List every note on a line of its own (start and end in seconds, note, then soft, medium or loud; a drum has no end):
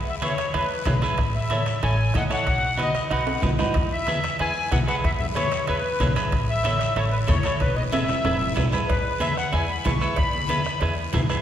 0.00 0.41 E2 medium
0.09 0.15 E5 medium
0.22 0.33 E4 medium
0.22 0.33 G#4 medium
0.22 0.34 B4 medium
0.22 0.53 C#5 medium
0.22 bombo rim medium
0.22 high conga medium
0.22 high timbale medium
0.22 short guiro medium
0.38 bombo rim medium
0.38 high timbale medium
0.38 short guiro medium
0.54 0.80 E2 medium
0.54 0.65 E4 medium
0.54 0.65 G#4 medium
0.54 0.65 B4 medium
0.54 1.00 B4 medium
0.54 bombo rim medium
0.54 high timbale medium
0.54 long guiro medium
0.85 0.99 B1 loud
0.85 0.92 E4 medium
0.85 0.92 G#4 medium
0.85 0.92 C#5 medium
0.85 bombo low medium
0.85 bombo rim medium
0.85 high conga medium
0.85 low conga medium
0.85 high timbale medium
0.85 short guiro medium
1.02 1.18 E4 medium
1.02 1.19 G#4 medium
1.02 1.19 B4 medium
1.02 bombo rim medium
1.02 high timbale medium
1.02 short guiro medium
1.18 1.70 A1 medium
1.18 bombo low medium
1.18 bombo rim medium
1.18 high timbale medium
1.18 long guiro medium
1.36 1.80 E5 medium
1.50 1.62 E4 medium
1.50 1.62 A4 medium
1.50 1.62 C#5 medium
1.50 bombo rim medium
1.50 high conga medium
1.50 high timbale medium
1.50 short guiro medium
1.66 bombo rim medium
1.66 high timbale medium
1.66 short guiro medium
1.82 2.09 A1 medium
1.82 1.94 E4 medium
1.82 1.94 A4 medium
1.82 1.95 C#5 medium
1.82 2.13 G#5 medium
1.82 bombo rim medium
1.82 high timbale medium
1.82 long guiro medium
2.14 2.27 E2 loud
2.14 2.21 E4 medium
2.14 2.21 A4 medium
2.14 2.21 D#5 medium
2.14 2.24 F#5 medium
2.14 bombo low medium
2.14 bombo rim medium
2.14 high conga medium
2.14 high timbale medium
2.14 short guiro medium
2.30 2.46 E4 medium
2.30 2.47 A4 medium
2.30 2.47 C#5 medium
2.30 2.81 F#5 loud
2.30 bombo rim medium
2.30 high timbale medium
2.30 short guiro medium
2.46 2.98 B1 medium
2.46 bombo low medium
2.46 bombo rim medium
2.46 high timbale medium
2.46 long guiro medium
2.77 2.89 D#4 medium
2.77 2.90 F#4 medium
2.77 2.90 B4 medium
2.77 bombo rim medium
2.77 high conga medium
2.77 high timbale medium
2.77 short guiro medium
2.81 3.10 D#5 medium
2.95 bombo rim medium
2.95 high timbale medium
2.95 short guiro medium
3.11 3.36 B1 medium
3.11 3.22 D#4 medium
3.11 3.22 F#4 medium
3.11 3.23 B4 medium
3.11 3.41 F#5 medium
3.11 bombo rim medium
3.11 high timbale medium
3.11 long guiro medium
3.27 high timbale medium
3.42 3.56 B1 medium
3.42 3.48 D#4 medium
3.42 3.48 F#4 soft
3.42 3.49 B4 medium
3.42 bombo low medium
3.42 bombo rim medium
3.42 high conga medium
3.42 low conga medium
3.42 low timbale medium
3.42 short guiro medium
3.59 3.75 D#4 medium
3.59 3.75 F#4 medium
3.59 3.76 B4 medium
3.59 bombo rim medium
3.59 low timbale medium
3.59 short guiro medium
3.74 4.27 E2 medium
3.74 bombo low medium
3.74 bombo rim medium
3.74 high timbale medium
3.74 long guiro medium
3.93 4.37 E5 loud
4.07 4.19 E4 medium
4.07 4.19 G#4 soft
4.07 4.19 B4 medium
4.07 bombo rim medium
4.07 high conga medium
4.07 high timbale medium
4.07 short guiro medium
4.24 bombo rim medium
4.24 high timbale medium
4.24 short guiro medium
4.39 4.66 E2 medium
4.39 4.51 E4 medium
4.39 4.52 G#4 medium
4.39 4.52 B4 medium
4.39 4.70 G#5 loud
4.39 bombo rim medium
4.39 high timbale medium
4.39 long guiro medium
4.72 4.85 B1 loud
4.72 4.77 E4 medium
4.72 4.78 G#4 soft
4.72 4.78 B4 medium
4.72 4.79 F#5 medium
4.72 bombo low medium
4.72 bombo rim medium
4.72 high conga medium
4.72 high timbale medium
4.72 low timbale medium
4.72 short guiro medium
4.87 5.05 E4 medium
4.87 5.05 G#4 medium
4.87 5.05 B4 medium
4.87 4.96 F#5 medium
4.87 bombo rim medium
4.87 high timbale medium
4.87 short guiro medium
5.04 5.55 E2 medium
5.04 5.11 E5 medium
5.04 bombo low medium
5.04 bombo rim medium
5.04 high timbale medium
5.04 long guiro medium
5.19 5.26 E5 medium
5.19 low conga medium
5.35 5.47 E4 medium
5.35 5.47 G#4 medium
5.35 5.48 B4 medium
5.35 5.66 C#5 medium
5.35 bombo rim medium
5.35 high conga medium
5.35 high timbale medium
5.35 short guiro medium
5.52 bombo rim medium
5.52 high timbale medium
5.52 short guiro medium
5.67 5.94 E2 medium
5.67 5.80 E4 medium
5.67 5.80 G#4 medium
5.67 6.13 B4 medium
5.67 5.80 B4 medium
5.67 bombo rim medium
5.67 high timbale medium
5.67 long guiro medium
6.00 6.13 B1 medium
6.00 6.06 E4 medium
6.00 6.06 G#4 medium
6.00 6.07 C#5 medium
6.00 bombo low medium
6.00 bombo rim medium
6.00 high conga medium
6.00 low conga medium
6.00 high timbale medium
6.00 short guiro medium
6.16 6.32 E4 medium
6.16 6.32 G#4 medium
6.16 6.33 B4 medium
6.16 bombo rim medium
6.16 high timbale medium
6.16 short guiro medium
6.32 6.84 A1 medium
6.32 bombo low medium
6.32 bombo rim medium
6.32 high timbale medium
6.32 long guiro medium
6.49 6.94 E5 loud
6.64 6.76 E4 medium
6.64 6.76 A4 medium
6.64 6.77 C#5 medium
6.64 bombo rim medium
6.64 high conga medium
6.64 high timbale medium
6.64 short guiro medium
6.79 bombo rim medium
6.79 high timbale medium
6.79 short guiro medium
6.96 7.22 A1 medium
6.96 7.08 E4 medium
6.96 7.08 A4 medium
6.96 7.08 C#5 medium
6.96 7.05 C#5 medium
6.96 bombo rim medium
6.96 high timbale medium
6.96 long guiro medium
7.12 7.19 B4 medium
7.27 7.42 E2 medium
7.27 7.34 E4 medium
7.27 7.34 A4 medium
7.27 7.34 C#5 medium
7.27 7.59 C#5 medium
7.27 bombo low medium
7.27 bombo rim medium
7.27 high conga medium
7.27 high timbale medium
7.27 low timbale medium
7.27 short guiro medium
7.43 7.61 E4 medium
7.43 7.61 A4 medium
7.43 7.62 C#5 medium
7.43 bombo rim medium
7.43 high timbale medium
7.43 short guiro medium
7.60 8.12 E1 medium
7.60 7.76 B4 medium
7.60 bombo low medium
7.60 bombo rim medium
7.60 high timbale medium
7.60 long guiro medium
7.76 7.83 D#5 medium
7.76 low conga medium
7.92 8.04 E4 medium
7.92 8.04 G#4 medium
7.92 8.04 B4 medium
7.92 8.53 E5 loud
7.92 bombo rim medium
7.92 high conga medium
7.92 high timbale medium
7.92 short guiro medium
8.08 bombo rim medium
8.08 low timbale medium
8.08 short guiro medium
8.25 8.51 E1 medium
8.25 8.37 E4 medium
8.25 8.37 G#4 medium
8.25 8.37 B4 medium
8.25 bombo rim medium
8.25 low conga medium
8.25 high timbale medium
8.25 long guiro medium
8.42 low timbale medium
8.56 8.70 B1 loud
8.56 8.62 E4 medium
8.56 8.62 G#4 medium
8.56 8.63 B4 medium
8.56 bombo low medium
8.56 bombo rim medium
8.56 low conga medium
8.56 low timbale medium
8.56 short guiro medium
8.72 8.89 E4 medium
8.72 8.90 G#4 medium
8.72 8.89 B4 medium
8.72 bombo rim medium
8.72 low conga medium
8.72 low timbale medium
8.72 short guiro medium
8.88 9.41 E2 medium
8.88 9.20 B4 medium
8.88 bombo low medium
8.88 bombo rim medium
8.88 cowbell loud
8.88 long guiro medium
9.20 9.32 E4 medium
9.20 9.32 G#4 medium
9.20 9.33 B4 medium
9.20 9.37 E5 medium
9.20 bombo rim medium
9.20 cowbell medium
9.20 high conga medium
9.20 short guiro medium
9.37 9.53 F#5 medium
9.37 bombo rim medium
9.37 short guiro medium
9.52 9.79 E2 medium
9.52 9.64 E4 medium
9.52 9.65 G#4 medium
9.52 9.65 B4 medium
9.52 9.69 G#5 medium
9.52 bombo rim medium
9.52 cowbell medium
9.52 long guiro medium
9.69 9.85 B5 medium
9.85 9.99 B1 loud
9.85 9.91 E4 medium
9.85 9.91 G#4 medium
9.85 9.92 B4 medium
9.85 10.17 C#6 medium
9.85 bombo low medium
9.85 bombo rim medium
9.85 cowbell medium
9.85 high conga medium
9.85 low timbale medium
9.85 short guiro medium
10.01 10.19 E4 medium
10.01 10.18 G#4 medium
10.01 10.19 B4 medium
10.01 bombo rim medium
10.01 short guiro medium
10.16 10.69 E2 medium
10.16 10.80 B5 medium
10.16 bombo low medium
10.16 bombo rim medium
10.16 cowbell medium
10.16 long guiro medium
10.33 high conga medium
10.48 10.61 E4 medium
10.48 10.61 G#4 medium
10.48 10.61 B4 medium
10.48 bombo rim medium
10.48 cowbell medium
10.48 high conga medium
10.48 short guiro medium
10.64 bombo rim medium
10.64 short guiro medium
10.81 11.07 E2 medium
10.81 10.93 E4 medium
10.81 10.93 G#4 medium
10.81 10.93 B4 medium
10.81 bombo rim medium
10.81 cowbell medium
10.81 long guiro medium
11.13 11.27 B1 loud
11.13 11.20 E4 medium
11.13 11.20 G#4 medium
11.13 11.20 B4 medium
11.13 bombo low medium
11.13 bombo rim medium
11.13 cowbell medium
11.13 high conga medium
11.13 low conga medium
11.13 low timbale medium
11.13 short guiro medium
11.29 11.42 E4 medium
11.29 11.42 G#4 medium
11.29 11.42 B4 medium
11.29 bombo rim medium
11.29 short guiro medium